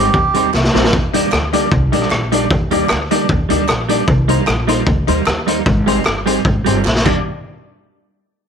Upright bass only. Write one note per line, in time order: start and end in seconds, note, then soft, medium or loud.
0.14 0.48 D#2 loud
0.54 0.72 C2 medium
0.74 0.90 A#1 medium
0.94 1.27 D#2 loud
1.32 1.66 D2 medium
1.72 1.93 C2 loud
1.93 2.08 A#1 medium
2.12 2.45 A#1 medium
2.51 2.84 D#2 loud
2.91 3.24 D2 medium
3.29 3.47 D#2 loud
3.51 3.66 D2 medium
3.70 4.03 A#1 medium
4.08 4.42 C2 loud
4.48 4.81 A#1 loud
4.87 5.05 D2 loud
5.08 5.24 D#2 medium
5.27 5.60 D#2 medium
5.66 6.00 G#1 loud
6.06 6.40 G1 medium
6.45 6.63 G#1 loud
6.66 6.82 G1 loud
6.85 7.03 A#1 medium
7.06 7.23 D#2 loud